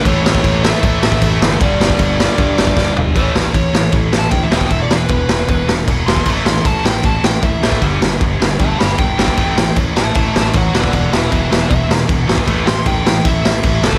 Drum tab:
CC |x---x---x---x---|x---x---x-------|x---x---x---x---|x---x---x---x---|
SD |--o---o---o---o-|--o---o---o-o---|--o---o---o---o-|--o---o---o---o-|
FT |----------------|--------------o-|----------------|----------------|
BD |o--oo---o--oo---|o--oo---o--oo---|o---o---o---o--o|o---o---o---o--o|

CC |x---x---x---x---|x---x---x---x---|x---x---x---x---|x---x---x---x---|
SD |--o---o---o---o-|--o---o---o---o-|--o---o---o---o-|--o---o---o---o-|
FT |----------------|----------------|----------------|----------------|
BD |o---o---o---o--o|o---o---o---o--o|o---o---o---o--o|o---o---o---o--o|

CC |x---x---x---x---|
SD |--o---o---o---o-|
FT |----------------|
BD |o---o---o---o--o|